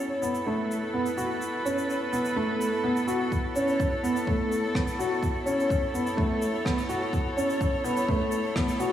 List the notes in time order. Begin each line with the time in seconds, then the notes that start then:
Already playing: B3 E4 A4 C#5
0.22 B3, shaker
0.35 shaker
0.44 A3 B4
0.71 shaker
0.94 B3
1.06 shaker
1.17 F#4, shaker
1.42 shaker
1.65 C#4, shaker
1.78 shaker
1.90 shaker
2.13 B3, shaker
2.25 shaker
2.36 A3
2.61 shaker
2.84 B3
2.96 shaker
3.07 F#4, shaker
3.32 kick, shaker
3.46 C#5
3.56 C#4, shaker
3.68 shaker
3.80 kick, shaker
4.03 B3, shaker
4.16 shaker
4.27 A3, kick
4.52 shaker
4.75 B3, kick, cross-stick
4.87 shaker
4.99 F#4, shaker
5.23 kick, shaker
5.46 C#4, shaker
5.60 shaker
5.70 kick, shaker
5.94 B3, shaker
6.07 shaker
6.17 A3, kick
6.42 shaker
6.65 B3, kick, cross-stick
6.78 shaker
6.89 F#4, shaker
7.13 kick, shaker
7.37 C#4, shaker
7.50 shaker
7.61 kick, shaker
7.84 B3, shaker
7.97 shaker
8.09 A3, kick
8.32 shaker
8.56 B3, kick, cross-stick
8.68 shaker
8.80 F#4, shaker